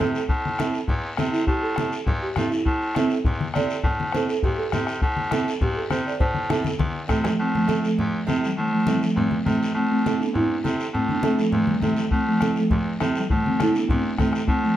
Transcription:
Already playing: C4
0.00 C3 C4 E4 A4, high conga, low conga, short guiro
0.15 short guiro
0.29 A2, bombo low, high conga, long guiro
0.46 high conga
0.59 C4 E4 A4, bombo rim, high conga, short guiro
0.74 short guiro
0.88 E2, bombo low, high conga, low conga, long guiro
1.17 C3 C4 E4 A4, bombo rim, high conga, short guiro
1.32 E4, short guiro
1.47 A2 G4, bombo low, high conga, long guiro
1.63 A4
1.76 C4 E4 A4, bombo rim, high conga, short guiro
1.92 short guiro
2.06 E2, bombo low, high conga, low conga, long guiro
2.22 G4
2.36 G2 C4 E4 A4, bombo rim, high conga, low conga, short guiro
2.51 E4, short guiro
2.65 A2, bombo low, high conga, long guiro
2.95 C4 E4 A4, bombo rim, high conga, short guiro
3.10 short guiro
3.24 E2, bombo low, high conga, low conga, long guiro
3.41 high conga
3.54 C3 C4 E4 A4 D5, bombo rim, high conga, short guiro
3.70 short guiro
3.84 A2, bombo low, high conga, low conga, long guiro
4.00 high conga
4.12 C4 E4 A4 C5, bombo rim, high conga, short guiro
4.29 A4, short guiro
4.43 E2 G4, bombo low, high conga, low conga, long guiro
4.58 A4
4.72 C3 C4 E4 A4, bombo rim, high conga, low conga, short guiro
4.87 bombo rim, short guiro
5.02 A2, bombo low, high conga, long guiro
5.17 high conga
5.31 C4 E4 A4, bombo rim, high conga, short guiro
5.48 short guiro
5.61 E2 G4, bombo low, high conga, low conga, long guiro
5.77 A4
5.90 C3 C4 E4 A4 C5, bombo rim, high conga, short guiro
6.07 D5, short guiro
6.20 A2 C5, bombo low, high conga, low conga
6.34 high conga
6.49 C4 E4 A4, bombo rim, high conga, short guiro
6.64 high conga, short guiro
6.79 E2, bombo low, high conga, long guiro
7.08 C3 E3 A3 C4 E4 A4, bombo low, bombo rim, low conga, short guiro
7.24 F3 A3, bombo rim, low conga, short guiro
7.39 A2 A3 C4, high conga, long guiro
7.55 F3 A3, high conga
7.67 C4 E4 A4, high conga, short guiro
7.84 F3 A3, short guiro
7.98 E2, high conga, low conga, long guiro
8.27 C3 C4 E4 A4, high conga, short guiro
8.44 E3 G3, short guiro
8.57 A2 E3 A3, high conga, long guiro
8.73 F3 A3
8.87 E3 G3 C4 E4 A4, high conga, short guiro
9.03 F3 A3, short guiro
9.16 E2 A3 C4, high conga, low conga, long guiro
9.31 high conga
9.45 C3 E3 A3 C4 E4 A4, high conga, low conga, short guiro
9.63 short guiro
9.74 A2 A3 C4, high conga, long guiro
9.92 A3 C4
10.06 C4 E4 A4, high conga, short guiro
10.21 B3 D4, short guiro
10.34 E2 C4 E4, high conga, low conga, long guiro
10.64 C3 C4 E4 A4, high conga, short guiro
10.80 short guiro
10.93 A2 A3 C4, high conga, low conga, long guiro
11.09 B3 D4, high conga
11.23 A3 C4 E4 A4, high conga, short guiro
11.39 F3 A3, short guiro
11.52 E2 E3 A3, high conga, low conga, long guiro
11.67 E3 G3, high conga
11.82 C3 E3 A3 C4 E4 A4, high conga, low conga, short guiro
11.97 short guiro
12.11 A2 A3 C4, bombo low, high conga, long guiro
12.29 F3 A3
12.40 C4 E4 A4, bombo rim, high conga, short guiro
12.56 F3 A3, short guiro
12.70 E2, bombo low, high conga, low conga, long guiro
13.00 C3 C4 E4 A4, bombo rim, high conga, short guiro
13.15 E3 G3, short guiro
13.30 A2 E3 A3, bombo low, high conga, low conga, long guiro
13.46 A3 C4, high conga
13.60 C4 E4 A4, bombo rim, high conga, short guiro
13.75 B3 D4, short guiro
13.89 E2 A3 C4, bombo low, high conga, low conga, long guiro
14.18 C3 E3 A3 C4 E4 A4, bombo low, bombo rim, high conga, low conga, short guiro
14.33 bombo rim, short guiro
14.47 A2 A3 C4, bombo low, high conga, long guiro
14.64 F3 A3

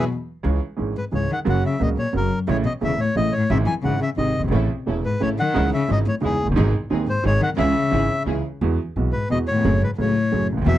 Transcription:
0.43 C#2 C#3 E3 G#3 C#4 G#4
0.76 G#1 G#2 E3 G#3 C#4 G#4
0.97 G#2 B4
1.12 C#2 G#2 C#3 E3 G#3 C#4 G#4 C#5
1.31 D#3 F#5
1.45 F#1 F#2 C#3 F#3 A#3 F#4
1.50 F#5
1.65 C#3 E5
1.80 C#2 A#2 C#3 F#3 A#3 F#4 D#5
1.98 A#2 C#5
2.13 F#1 F#2 C#3 F#3 A#3 F#4
2.17 A#4
2.47 A1 A2 C#3 E3 A3 E4 C#5
2.64 B2 D#5
2.81 E1 E2 C#3 E3 A3 E4 E5
2.98 A2 C#5
3.15 A1 A2 C#3 E3 A3 E4 D#5
3.32 A2 C#5
3.50 G#1 G#2 C#3 E3 G#3 E4 E5
3.66 E3 G#5
3.83 G#1 G#2 C#3 E3 G#3 E4 F#5
4.01 C#3 E5
4.17 G#1 G#2 C3 D#3 G#3 D#4 D#5
4.39 F#1
4.43 G1
4.48 G#1 A1 A2 C#3 E3 A3 E4
4.52 A1 C#4 E4 A4
4.86 E1 E2 C#3 E3 A3 C#4 E4 A4
5.04 G#2 B4
5.20 A1 A2 C#3 E3 A3 C#4 E4 A4 C#5
5.38 D#3 F#5
5.54 C#2 C#3 E3 G#3 C#4 D#4 E4
5.73 C#3 E5
5.88 G#1 G#2 C#3 E3 G#3 C#4 D#4 E4
5.92 D#5
6.06 A2 C#5
6.21 C#2 E2 C#3 E3 G#3 C#4 D#4 E4
6.25 G#4
6.43 F1
6.47 F#1
6.52 G1
6.56 G#1 G#2 C3 D#3 G#3 C4 D#4 G#4
6.90 D#1 D#2 C3 D#3 G#3 C4 D#4 G#4
7.07 G#2 C5
7.23 G#1 G#2 C3 D#3 G#3 C4 D#4 G#4 C#5
7.40 D#3 F#5
7.57 C#2 C#3 E3 G#3 C#4 E4 G#4 E5
7.91 G#1 G#2 C#3 E3 G#3 C#4 E4 G#4
8.26 C#2 C#3 E3 G#3 C#4 E4 G#4
8.61 E2 E3 G#3 B3 F#4
8.96 B1 B2 E3 G#3 B3 F#4
9.12 G#2 B4
9.30 E2 B2 E3 G#3 B3 F#4 D#5
9.47 A2 C#5
9.52 D#2
9.57 E2 F2
9.64 F#1 F#2 F#3 A3 C#4 G#4
9.80 G#2 B4
9.97 C#2 A2 C#3 F#3 A3 C#4 G#4 C#5
10.32 F#1 F#2 F#3 A3 C#4 G#4
10.52 C#2
10.57 D2
10.62 D#2
10.66 E2 B2 E3 F#3 B3 F#4 E5

